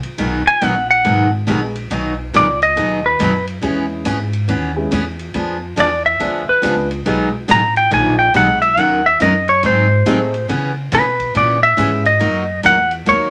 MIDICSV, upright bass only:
0, 0, Header, 1, 3, 480
1, 0, Start_track
1, 0, Key_signature, 5, "major"
1, 0, Tempo, 429185
1, 210, Time_signature, 4, 2, 24, 8
1, 14875, End_track
2, 0, Start_track
2, 0, Title_t, "Upright bass"
2, 0, Program_c, 0, 32
2, 208, Note_on_c, 0, 35, 83
2, 499, Note_off_c, 0, 35, 0
2, 693, Note_on_c, 0, 34, 85
2, 1159, Note_off_c, 0, 34, 0
2, 1174, Note_on_c, 0, 32, 93
2, 1639, Note_off_c, 0, 32, 0
2, 1659, Note_on_c, 0, 34, 87
2, 2122, Note_off_c, 0, 34, 0
2, 2135, Note_on_c, 0, 35, 83
2, 2600, Note_off_c, 0, 35, 0
2, 2624, Note_on_c, 0, 37, 93
2, 3085, Note_off_c, 0, 37, 0
2, 3103, Note_on_c, 0, 39, 87
2, 3565, Note_off_c, 0, 39, 0
2, 3584, Note_on_c, 0, 42, 93
2, 4046, Note_off_c, 0, 42, 0
2, 4062, Note_on_c, 0, 40, 85
2, 4524, Note_off_c, 0, 40, 0
2, 4544, Note_on_c, 0, 44, 95
2, 5005, Note_off_c, 0, 44, 0
2, 5022, Note_on_c, 0, 39, 92
2, 5485, Note_off_c, 0, 39, 0
2, 5503, Note_on_c, 0, 40, 96
2, 5965, Note_off_c, 0, 40, 0
2, 5981, Note_on_c, 0, 41, 84
2, 6444, Note_off_c, 0, 41, 0
2, 6463, Note_on_c, 0, 40, 93
2, 6925, Note_off_c, 0, 40, 0
2, 6939, Note_on_c, 0, 38, 86
2, 7226, Note_off_c, 0, 38, 0
2, 7428, Note_on_c, 0, 37, 96
2, 7887, Note_off_c, 0, 37, 0
2, 7906, Note_on_c, 0, 35, 81
2, 8366, Note_off_c, 0, 35, 0
2, 8383, Note_on_c, 0, 33, 93
2, 8844, Note_off_c, 0, 33, 0
2, 8858, Note_on_c, 0, 34, 100
2, 9322, Note_off_c, 0, 34, 0
2, 9332, Note_on_c, 0, 35, 92
2, 9798, Note_off_c, 0, 35, 0
2, 9812, Note_on_c, 0, 39, 80
2, 10278, Note_off_c, 0, 39, 0
2, 10297, Note_on_c, 0, 42, 97
2, 10760, Note_off_c, 0, 42, 0
2, 10775, Note_on_c, 0, 44, 96
2, 11239, Note_off_c, 0, 44, 0
2, 11257, Note_on_c, 0, 45, 91
2, 11720, Note_off_c, 0, 45, 0
2, 11743, Note_on_c, 0, 49, 90
2, 12203, Note_off_c, 0, 49, 0
2, 12217, Note_on_c, 0, 47, 96
2, 12680, Note_off_c, 0, 47, 0
2, 12701, Note_on_c, 0, 46, 90
2, 13162, Note_off_c, 0, 46, 0
2, 13176, Note_on_c, 0, 44, 91
2, 13639, Note_off_c, 0, 44, 0
2, 13654, Note_on_c, 0, 42, 82
2, 14119, Note_off_c, 0, 42, 0
2, 14134, Note_on_c, 0, 40, 98
2, 14598, Note_off_c, 0, 40, 0
2, 14617, Note_on_c, 0, 39, 87
2, 14875, Note_off_c, 0, 39, 0
2, 14875, End_track
3, 0, Start_track
3, 0, Title_t, "Muted upright bass strokes"
3, 47, Note_on_c, 9, 29, 43
3, 158, Note_off_c, 9, 29, 0
3, 521, Note_on_c, 9, 29, 41
3, 633, Note_off_c, 9, 29, 0
3, 7254, Note_on_c, 9, 29, 42
3, 7366, Note_off_c, 9, 29, 0
3, 14875, End_track
0, 0, End_of_file